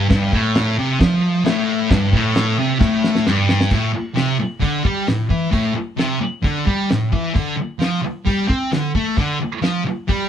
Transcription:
0.09 distorted electric guitar G2, kick, snare, crash
0.32 distorted electric guitar A2, kick
0.55 snare, crash
0.79 distorted electric guitar C3
1.00 distorted electric guitar F3, kick, snare, crash
1.45 distorted electric guitar A2, snare, crash
1.90 distorted electric guitar G2, kick, snare, crash
2.13 distorted electric guitar A2, kick
2.35 snare, crash
2.59 distorted electric guitar C3
2.80 distorted electric guitar A2, kick, snare
3.04 snare
3.15 snare
3.27 distorted electric guitar G2, snare
3.49 snare
3.61 snare
3.71 distorted electric guitar A2, kick, crash
3.93 muted distorted electric guitar stroke
4.15 distorted electric guitar C3, snare, open hi-hat
4.39 muted distorted electric guitar stroke
4.60 distorted electric guitar D3, kick, open hi-hat
4.84 distorted electric guitar G3, kick
5.07 distorted electric guitar A2, snare, open hi-hat
5.30 distorted electric guitar E3, kick
5.51 distorted electric guitar A2, kick, open hi-hat
5.75 muted distorted electric guitar stroke
5.98 distorted electric guitar C3, snare, open hi-hat
6.21 muted distorted electric guitar stroke
6.43 distorted electric guitar D3, kick, open hi-hat
6.65 distorted electric guitar G3, kick
6.90 distorted electric guitar A2, snare, open hi-hat
7.12 distorted electric guitar E3, kick
7.34 distorted electric guitar D3, kick, open hi-hat
7.57 muted distorted electric guitar stroke
7.80 distorted electric guitar F3, snare, open hi-hat
8.03 muted distorted electric guitar stroke
8.26 distorted electric guitar G3, kick, open hi-hat
8.48 distorted electric guitar C4, kick
8.72 distorted electric guitar D3, snare, open hi-hat
8.95 distorted electric guitar A3, kick
9.17 distorted electric guitar D3, kick, open hi-hat
9.41 muted distorted electric guitar stroke
9.62 distorted electric guitar F3, snare, open hi-hat
9.85 muted distorted electric guitar stroke
10.08 distorted electric guitar G3, kick, open hi-hat

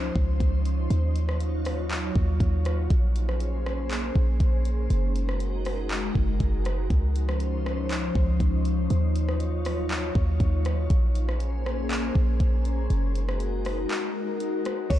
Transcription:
Already playing: 808-style bass C#2, ambient pad F3 C#4 D#4 C5
0.16 808-style bass C#2, kick
0.40 808-style bass C#2, kick, closed hi-hat
0.65 closed hi-hat
0.90 808-style bass D#2, ambient pad F#3 F4 C#5, closed hi-hat
1.16 closed hi-hat
1.29 cross-stick
1.40 closed hi-hat
1.65 cross-stick, open hi-hat
1.91 clap, closed hi-hat
2.15 808-style bass D#2, kick
2.40 808-style bass D#2, kick, closed hi-hat
2.65 cross-stick, closed hi-hat
2.90 808-style bass A#1, ambient pad A#3 C#4 G#4 C5, kick, closed hi-hat
3.16 closed hi-hat
3.29 cross-stick
3.40 closed hi-hat
3.66 cross-stick
3.91 clap, closed hi-hat
4.15 808-style bass A#1, kick
4.40 808-style bass A#1, kick, closed hi-hat
4.65 closed hi-hat
4.90 808-style bass F#1, ambient pad G#3 D#4 F#4 A#4, closed hi-hat
5.16 closed hi-hat
5.29 cross-stick
5.40 closed hi-hat
5.65 cross-stick, open hi-hat
5.90 clap, closed hi-hat
6.15 808-style bass F#1, kick
6.40 808-style bass F#1, kick, closed hi-hat
6.65 cross-stick, closed hi-hat
6.90 808-style bass C#2, ambient pad F3 C#4 D#4 C5, kick, closed hi-hat
7.16 closed hi-hat
7.29 cross-stick
7.40 closed hi-hat
7.66 cross-stick
7.90 clap, closed hi-hat
8.15 808-style bass C#2, kick
8.40 808-style bass C#2, kick, closed hi-hat
8.65 closed hi-hat
8.90 808-style bass D#2, ambient pad F#3 F4 C#5, closed hi-hat
9.16 closed hi-hat
9.29 cross-stick
9.40 closed hi-hat
9.65 cross-stick, open hi-hat
9.90 clap, closed hi-hat
10.15 808-style bass D#2, kick
10.40 808-style bass D#2, kick, closed hi-hat
10.65 cross-stick, closed hi-hat
10.90 808-style bass A#1, ambient pad A#3 C#4 G#4 C5, kick, closed hi-hat
11.15 closed hi-hat
11.29 cross-stick
11.40 closed hi-hat
11.66 cross-stick
11.90 clap, closed hi-hat
12.15 808-style bass A#1, kick
12.40 808-style bass A#1, kick, closed hi-hat
12.65 closed hi-hat
12.90 808-style bass F#1, ambient pad G#3 D#4 F#4 A#4, closed hi-hat
13.15 closed hi-hat
13.29 cross-stick
13.40 closed hi-hat
13.65 cross-stick, open hi-hat
13.90 clap, closed hi-hat
14.40 closed hi-hat
14.65 cross-stick, closed hi-hat
14.90 808-style bass C#2, ambient pad D#3 C#4 D#4 F4, clean electric guitar C#5, kick, closed hi-hat, crash

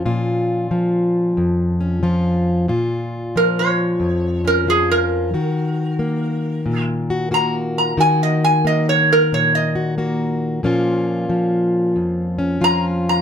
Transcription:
Already playing: steel-string acoustic guitar F3 C#4
0.06 steel-string acoustic guitar A#2 F4
0.71 steel-string acoustic guitar F3
1.37 steel-string acoustic guitar F2
1.80 steel-string acoustic guitar C#4
2.03 steel-string acoustic guitar F3 F4
2.68 steel-string acoustic guitar A#2 F4
3.36 steel-string acoustic guitar F3, resonator guitar played with a steel bar A#4
3.59 resonator guitar played with a steel bar C#5
4.00 steel-string acoustic guitar F2
4.45 steel-string acoustic guitar C#4, resonator guitar played with a steel bar A#4
4.67 steel-string acoustic guitar F3 F4, resonator guitar played with a steel bar G#4
4.91 resonator guitar played with a steel bar A#4
5.34 steel-string acoustic guitar D#3 F#4
5.99 steel-string acoustic guitar A#3
6.66 steel-string acoustic guitar A#2
7.10 steel-string acoustic guitar F#4
7.31 steel-string acoustic guitar A#3 F#4, resonator guitar played with a steel bar A#5
7.78 resonator guitar played with a steel bar A#5
7.97 steel-string acoustic guitar D#3 F#4, resonator guitar played with a steel bar G#5
8.23 resonator guitar played with a steel bar D#5
8.44 resonator guitar played with a steel bar G#5
8.65 steel-string acoustic guitar A#3, resonator guitar played with a steel bar D#5
8.89 resonator guitar played with a steel bar C#5
9.13 resonator guitar played with a steel bar A#4
9.32 steel-string acoustic guitar A#2, resonator guitar played with a steel bar C#5
9.55 resonator guitar played with a steel bar D#5
9.75 steel-string acoustic guitar F#4
9.98 steel-string acoustic guitar A#3 F#4
10.63 steel-string acoustic guitar A#2 F3 A#3 C#4 F4
11.29 steel-string acoustic guitar F3
11.96 steel-string acoustic guitar F2
12.39 steel-string acoustic guitar C#4
12.61 steel-string acoustic guitar F3 F4, resonator guitar played with a steel bar A#5
13.09 resonator guitar played with a steel bar A#5

